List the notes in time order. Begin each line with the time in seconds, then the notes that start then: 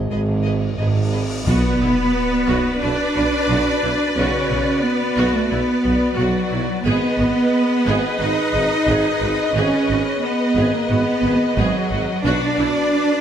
Already playing: G#3, cymbal swell
0.10 G#1 G#2 G#4 B4 D#5
0.44 G#4 B4 D#5
0.78 G#1 G#2 G#4 B4 D#5
1.12 G#4 B4 D#5
1.45 B1 B2 B3 F#4 B4 D5, sub drop
1.81 B1 E4
2.48 B1 F#4
2.81 B1 D4 E4 D5
3.15 B1 F#4
3.49 B1 F#4
3.82 B1 E4
4.15 B1 C#3 C#4 F#4 C#5
4.49 B1 E4
4.83 B3 B4
5.17 B1 F#4
5.33 A3 A4
5.50 B1 B3 E4 B4
5.84 B1 F#4
6.18 B1 F#3 F#4
6.52 B1 E4
6.85 G#1 B3 G#4 B4 D#5
7.18 G#1 F#4
7.86 G#1 G#4
8.20 G#1 D#4 F#4 D#5
8.54 G#1 G#4
8.88 G#1 G#4
9.21 G#1 F#4
9.53 G#1 C#4 G#4 C#5
9.88 G#1 F#4
10.21 B3 B4
10.56 G#1 G#4
10.72 A#3 A#4
10.88 G#1 B3 F#4 B4
11.23 G#1 G#4
11.56 G#1 F#3 F#4 G#4
11.91 G#1 F#4
12.24 B1 B2 D4 F#4 B4 D5
12.58 B1 E4